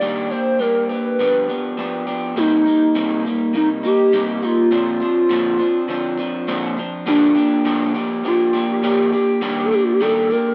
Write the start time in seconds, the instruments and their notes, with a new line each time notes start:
Already playing: soft synth lead D5
0.01 clean electric guitar D#3 G3 A#3 D4 G4
0.30 clean electric guitar A#3 D4 G4, soft synth lead C5
0.59 clean electric guitar G3 A#3 D4 G4, soft synth lead A#4
0.89 clean electric guitar A#3 D4 G4, soft synth lead B4
1.19 clean electric guitar G2 D3 F3 B3 D4 G4
1.48 clean electric guitar F3 B3 D4 G4
1.77 clean electric guitar F3 B3 D4 G4
2.07 clean electric guitar F3 B3 D4 G4
2.36 clean electric guitar C3 G3 A#3 D#4, soft synth lead D#4
2.66 clean electric guitar G3 A#3 D#4
2.95 clean electric guitar C3 G3 A#3 D#4
3.25 clean electric guitar G3 A#3 D#4
3.54 clean electric guitar C3 G3 A#3 D#4, soft synth lead D#4
3.83 clean electric guitar G3 A#3 D#4, soft synth lead G4
4.13 clean electric guitar C3 G3 A#3 D#4
4.42 clean electric guitar G3 A#3 D#4, soft synth lead F4
4.71 clean electric guitar A#2 D3 F3 C4 D4
5.00 clean electric guitar F3 C4 D4
5.29 clean electric guitar A#2 D3 F3 C4 D4
5.59 clean electric guitar F3 C4 D4
5.88 clean electric guitar D3 F3 C4 D4
6.18 clean electric guitar F3 C4 D4
6.47 clean electric guitar A#2 D3 F3 C4 D4
6.77 clean electric guitar F3 C4 D4
7.06 clean electric guitar A#2 D3 F3 A#3 D4 G4, soft synth lead D4
7.35 clean electric guitar F3 A#3 D4 G4
7.65 clean electric guitar A#2 D3 F3 A#3 D4 G4
7.94 clean electric guitar F3 A#3 D4 G4
8.24 clean electric guitar F3 A#3 D4 G4, soft synth lead F4
8.53 clean electric guitar F3 A#3 D4 G4
8.72 soft synth lead G4
8.83 clean electric guitar A#2 D3 F3 A#3 D4 G4
9.12 clean electric guitar A#3 D4 G4, soft synth lead G4
9.41 clean electric guitar D#3 G3 A#3 D4 G4
9.65 soft synth lead A4
9.71 clean electric guitar A#3 D4 G4, soft synth lead G4
9.84 soft synth lead F4
9.93 soft synth lead G4
10.00 clean electric guitar D#3 G3 A#3 D4 G4, soft synth lead A4
10.30 clean electric guitar A#3 D4 G4, soft synth lead A#4